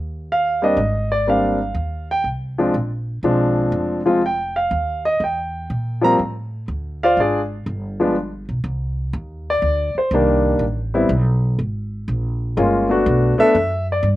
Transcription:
Already playing: D#2
0.32 F5
0.62 G3 A#3 C4 D4 D#5
0.77 G#1
1.12 D5
1.27 G3 A#3 C4 D4 F5
1.75 D#2
2.11 G5
2.24 C2
2.58 F3 G#3 C4 D4
2.74 A#1
3.23 B1 F3 G#3 C4 D4
3.72 F1
4.06 F3 G#3 C4 F4
4.26 G5
4.56 F5
4.71 D#2
5.05 D#5
5.20 E2 G5
5.70 A#2
6.01 F3 G3 A#3 C4 A#5
6.19 A2
6.68 D2
7.03 F4 C5 D5 F5
7.17 G#1 D4 F4 G#4 D5
7.66 G1
8.00 F3 G#3 B3 D4
8.49 B1
8.64 C2
9.13 D#2
9.50 D5
9.62 D2
9.95 C5, muted upright bass stroke
10.11 C2 D#3 G3 A#3 D4
10.59 A1
10.94 G3 B3 C4 E4
11.09 B1
11.59 G#1
12.08 A#1
12.57 G1 G#3 A#3 C#4 F4
12.89 A3 B3 D4 F#4
13.06 B1
13.38 A3 B3 D4 A4 E5, muted upright bass stroke
13.55 F#2
13.92 D5
14.03 G2

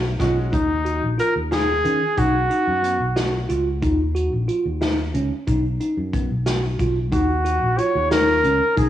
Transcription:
Already playing: B1
0.19 B1 G#3 C#4 F4 F#4 C#5, kick, snare, closed hi-hat
0.52 D#2 D#4, kick, closed hi-hat
0.85 F#4, closed hi-hat
1.02 A#1
1.18 F4 A#4, closed hi-hat
1.36 D#2
1.51 D#4 G#4, snare, closed hi-hat
1.84 D#3 C#4, closed hi-hat
2.17 B1 D#4 F#4, kick, closed hi-hat
2.50 D#4, closed hi-hat
2.67 F#2
2.83 B3, closed hi-hat
3.00 B1
3.16 F#4, snare, closed hi-hat
3.49 C#2 F4, closed hi-hat
3.82 D#2 D#4, kick, closed hi-hat
4.15 F#4, closed hi-hat
4.32 A#1
4.48 F4, closed hi-hat
4.65 D#2
4.81 D#4, snare, closed hi-hat
5.14 C#2 C#4, closed hi-hat
5.47 B1 D#4, kick, closed hi-hat
5.80 D#4, closed hi-hat
5.97 F#2
6.13 B3, kick, closed hi-hat
6.30 B1
6.46 F#4, snare, closed hi-hat
6.79 B1 F4, kick, closed hi-hat
7.12 D#2 D#4 F#4, kick, closed hi-hat
7.45 F#4, closed hi-hat
7.62 A#1
7.78 F4 C#5, closed hi-hat
7.95 D#2
8.11 D#4 A#4, snare, closed hi-hat
8.44 C#2 C#4, closed hi-hat
8.77 B1 D#4 G#4, kick, closed hi-hat

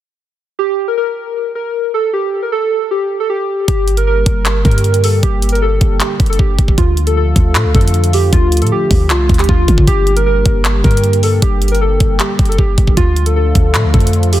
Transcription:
0.59 G4
0.88 A#4
0.97 A#4
1.55 A#4
1.94 A4
2.13 G4
2.43 A#4
2.52 A4
2.91 G4
3.20 A4
3.30 G4
3.68 G1 D3 G3 A#3 G4, kick, closed hi-hat
3.88 closed hi-hat
3.97 A#4, closed hi-hat
4.07 A#4
4.26 G1, kick, closed hi-hat
4.45 clap, closed hi-hat
4.65 G2 A#4, kick, closed hi-hat
4.71 closed hi-hat
4.78 closed hi-hat
4.84 closed hi-hat
4.94 closed hi-hat
5.04 A4, open hi-hat
5.23 G1 G4, kick, closed hi-hat
5.42 closed hi-hat
5.49 A#4, closed hi-hat
5.55 closed hi-hat
5.62 A4
5.81 G1, kick, closed hi-hat
6.00 G4, clap, closed hi-hat
6.20 G1, kick, closed hi-hat
6.26 A4, closed hi-hat
6.33 closed hi-hat
6.39 G1 G4, kick
6.59 G1, kick, closed hi-hat
6.68 kick
6.78 D2 F3 A3 F4, kick, closed hi-hat
6.97 closed hi-hat
7.07 A4, closed hi-hat
7.17 A4
7.36 D2, kick, closed hi-hat
7.55 A2, clap, closed hi-hat
7.65 D2
7.75 F2 A4, kick, closed hi-hat
7.81 closed hi-hat
7.88 closed hi-hat
7.94 closed hi-hat
8.04 closed hi-hat
8.13 G4, open hi-hat
8.33 D2 F4, kick, closed hi-hat
8.52 closed hi-hat
8.57 closed hi-hat
8.62 A2 A4, closed hi-hat
8.67 closed hi-hat
8.72 G4
8.91 D2, kick, open hi-hat
9.10 C2 F4, clap, closed hi-hat
9.29 D2, kick, closed hi-hat
9.34 closed hi-hat
9.39 G4, clap, closed hi-hat
9.44 closed hi-hat
9.49 D2 F4, kick
9.68 D3, kick, closed hi-hat
9.78 kick
9.87 G1 G3 A#3 G4, kick, closed hi-hat
10.07 closed hi-hat
10.16 A#4, closed hi-hat
10.26 A#4
10.46 G1, kick, closed hi-hat
10.65 clap, closed hi-hat
10.84 G2 A#4, kick, closed hi-hat
10.91 closed hi-hat
10.97 closed hi-hat
11.04 closed hi-hat
11.13 closed hi-hat
11.23 A4, open hi-hat
11.42 G1 G4, kick, closed hi-hat
11.62 closed hi-hat
11.68 A#4, closed hi-hat
11.75 closed hi-hat
11.81 A4
12.00 G1, kick, closed hi-hat
12.20 G4, clap, closed hi-hat
12.39 G1, kick, closed hi-hat
12.45 A4, closed hi-hat
12.52 closed hi-hat
12.59 G1 G4, kick
12.78 G1, kick, closed hi-hat
12.87 kick
12.97 D2 D3 F3 A3 F4, kick, closed hi-hat
13.16 closed hi-hat
13.26 A4, closed hi-hat
13.36 A4
13.55 D2, kick, closed hi-hat
13.74 A2, clap, closed hi-hat
13.84 D2
13.94 F2 A4, kick, closed hi-hat
14.00 closed hi-hat
14.07 closed hi-hat
14.13 closed hi-hat
14.23 closed hi-hat
14.33 G4, open hi-hat

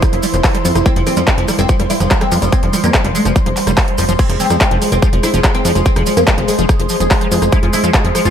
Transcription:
Already playing: E3 E4 C5 C6
0.02 F3, kick, cross-stick, closed hi-hat, cabasa
0.13 F1 F3, closed hi-hat
0.23 G3, open hi-hat, cabasa
0.34 F1 F3, cross-stick, closed hi-hat, cabasa
0.44 F3, kick, clap, open hi-hat, cabasa
0.55 G3, cross-stick, closed hi-hat
0.65 F2 F3, open hi-hat, cabasa
0.75 F1 F3, cross-stick, closed hi-hat, cabasa
0.86 G3 C4, kick, closed hi-hat, cabasa
0.96 F1 F3, closed hi-hat
1.07 F3 C4, cross-stick, open hi-hat, cabasa
1.17 F2 F3 G3, closed hi-hat, cabasa
1.27 F3 C4, kick, cross-stick, clap, closed hi-hat, cabasa
1.38 F1 F3, closed hi-hat
1.48 F3 G3, cross-stick, open hi-hat, cabasa
1.59 F1 F3 C4, closed hi-hat, cabasa
1.69 F3, kick, closed hi-hat, cabasa
1.80 F1 F3 G3, cross-stick, closed hi-hat
1.90 F3 E4, open hi-hat, cabasa
2.00 F1 F3, cross-stick, closed hi-hat, cabasa
2.11 F3 G3, kick, clap, closed hi-hat, cabasa
2.21 F3 C4, cross-stick, closed hi-hat
2.32 F2 F3, open hi-hat, cabasa
2.42 F1 F3 G3, closed hi-hat, cabasa
2.52 F3 C4, kick, cross-stick, closed hi-hat, cabasa
2.63 F1 F3, closed hi-hat
2.73 F3 G3, cross-stick, open hi-hat, cabasa
2.84 F2 F3 A#3, closed hi-hat, cabasa
2.94 F3, kick, cross-stick, clap, closed hi-hat, cabasa
3.05 F1 F3 G3, closed hi-hat
3.15 F3 G#3, open hi-hat, cabasa
3.25 F1 F3, cross-stick, closed hi-hat, cabasa
3.36 G3, kick, closed hi-hat, cabasa
3.46 F1 F3, cross-stick, closed hi-hat
3.57 clap, open hi-hat, cabasa
3.67 F1 G3, cross-stick, closed hi-hat, cabasa
3.77 F3, kick, clap, open hi-hat, cabasa
3.88 closed hi-hat
3.98 F1 F3, cross-stick, open hi-hat, cabasa
4.09 F1 F3, closed hi-hat, cabasa
4.19 F3 G#3 C4 G#4, kick, closed hi-hat, crash, cabasa
4.29 F1 F3, cross-stick, closed hi-hat
4.40 F3 C4, open hi-hat, cabasa
4.50 F2 F3, cross-stick, closed hi-hat, cabasa
4.61 F3 C4, kick, clap, closed hi-hat, cabasa
4.71 F1 F3, closed hi-hat
4.82 F3, cross-stick, open hi-hat, cabasa
4.92 F1 F3 C4, closed hi-hat, cabasa
5.02 F3, kick, cross-stick, closed hi-hat, cabasa
5.13 F1 F3, closed hi-hat
5.23 F3 E4, cross-stick, open hi-hat, cabasa
5.34 F1 F3, closed hi-hat, cabasa
5.44 F3, kick, clap, closed hi-hat, cabasa
5.55 F3 C4, cross-stick, closed hi-hat
5.65 F2 F3, open hi-hat, cabasa
5.75 F1 F3, cross-stick, closed hi-hat, cabasa
5.86 F3 C4, kick, closed hi-hat, cabasa
5.96 F1 F3, cross-stick, closed hi-hat
6.06 F3, open hi-hat, cabasa
6.17 F2 F3 A#3, closed hi-hat, cabasa
6.27 F3, kick, cross-stick, clap, closed hi-hat, cabasa
6.38 F1 F3, closed hi-hat
6.48 F3 G#3, open hi-hat, cabasa
6.58 F1 F3, closed hi-hat, cabasa
6.69 kick, cross-stick, closed hi-hat, cabasa
6.79 F1 F3, closed hi-hat
6.89 F3, open hi-hat, cabasa
7.00 F1 F3, cross-stick, closed hi-hat, cabasa
7.11 F3, kick, clap, open hi-hat, cabasa
7.21 F3, cross-stick, closed hi-hat
7.32 F2 F3, open hi-hat, cabasa
7.42 F1 F3, cross-stick, closed hi-hat, cabasa
7.52 F3 E4, kick, closed hi-hat, cabasa
7.63 F1 F3, closed hi-hat
7.73 F3 E4, cross-stick, open hi-hat, cabasa
7.84 F2 F3, closed hi-hat, cabasa
7.94 F3, kick, cross-stick, clap, closed hi-hat, cabasa
8.04 F1 F3, closed hi-hat
8.15 F3, cross-stick, open hi-hat, cabasa
8.25 F1 F3 F4, closed hi-hat, cabasa

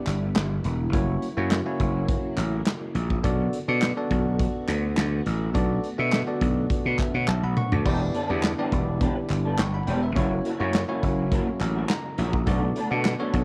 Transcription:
Already playing: D3 G3 B3 D4 E4 G4 D5
0.07 G1, clap, closed hi-hat
0.35 G1, snare, clap, closed hi-hat
0.64 E1, closed hi-hat
0.93 F#1 C#3 F#3 A#3 C#4 E4 F#4 C#5, kick, closed hi-hat
1.22 closed hi-hat
1.37 F#2 A#3 C#4 E4 F#4 C#5
1.51 snare, clap, closed hi-hat
1.66 A#3 C#4 E4 F#4 C#5
1.80 F#1, kick, closed hi-hat
2.09 kick, closed hi-hat
2.37 A1, clap, closed hi-hat
2.66 snare, clap, closed hi-hat
2.95 A#1, closed hi-hat
3.10 kick
3.23 B1 D3 A3 B3 D4 F#4 A4 D5, kick, closed hi-hat
3.53 closed hi-hat
3.68 B2 B3 D4 F#4 A4 D5
3.82 snare, clap, closed hi-hat
3.97 B3 D4 F#4 A4 D5
4.11 B1, kick, closed hi-hat
4.39 kick, closed hi-hat
4.68 D2, clap, closed hi-hat
4.97 D2, snare, clap, closed hi-hat
5.26 A1, closed hi-hat
5.54 B1 B3 D4 F#4 A4 D5, kick, closed hi-hat
5.84 closed hi-hat
5.98 B2 B3 D4 F#4 A4 E5
6.12 snare, clap, closed hi-hat
6.27 B3 D4 F#4 A4 D5
6.41 B1, kick, closed hi-hat
6.70 kick, closed hi-hat
6.85 B2
6.99 B4 E5, kick, clap, closed hi-hat
7.14 B2 C#5 F#5
7.28 B1 E5 A5, clap, high tom
7.43 B1 F#5 B5
7.57 F#5 C#6, mid tom
7.72 D2 A5 D6, floor tom
7.85 E1 G3 B3 D4 E4 G4 D5, kick, crash
8.01 muted clean electric guitar stroke
8.14 B3 D4 A4, closed hi-hat
8.29 E2 B3 D4 E4 G4 D5
8.43 muted clean electric guitar stroke, snare, clap, closed hi-hat
8.58 B3 D4 E4 G4 D5
8.72 E1, muted clean electric guitar stroke, kick, closed hi-hat
8.87 muted clean electric guitar stroke
9.01 B3 D4 G4, kick, closed hi-hat
9.16 muted clean electric guitar stroke
9.29 G1, muted clean electric guitar stroke, clap, closed hi-hat
9.45 B3 D4 A4
9.58 G1 G5 C#6, snare, clap, closed hi-hat
9.74 F#5 B5, muted clean electric guitar stroke
9.87 E1 B3 D4 G4 D5 G5, closed hi-hat
10.02 B4 E5, muted clean electric guitar stroke
10.15 F#1 C#3 F#3 A#3 C#4 E4 F#4 C#5, kick, closed hi-hat
10.31 muted clean electric guitar stroke
10.45 A#3 E4 F#4, closed hi-hat
10.60 F#2 A#3 C#4 E4 F#4 C#5
10.74 muted clean electric guitar stroke, snare, clap, closed hi-hat
10.88 A#3 C#4 E4 F#4 C#5
11.03 F#1, muted clean electric guitar stroke, kick, closed hi-hat
11.18 muted clean electric guitar stroke
11.31 A#3 E4 F#4, kick, closed hi-hat
11.47 muted clean electric guitar stroke
11.60 A1, muted clean electric guitar stroke, clap, closed hi-hat
11.75 A#3 E4 F#4
11.89 A#5, snare, clap, closed hi-hat
12.04 muted clean electric guitar stroke
12.18 A#1 A#3 E4 F#4, closed hi-hat
12.33 muted clean electric guitar stroke, kick
12.46 B1 D3 A3 B3 D4 F#4 A4 D5, kick, closed hi-hat
12.62 muted clean electric guitar stroke
12.76 A3 D4 A4, closed hi-hat
12.91 B2 A3 B3 D4 F#4 A4 D5
13.05 muted clean electric guitar stroke, snare, clap, closed hi-hat
13.19 A3 B3 D4 F#4 A4 C#5
13.34 B1, muted clean electric guitar stroke, kick, closed hi-hat

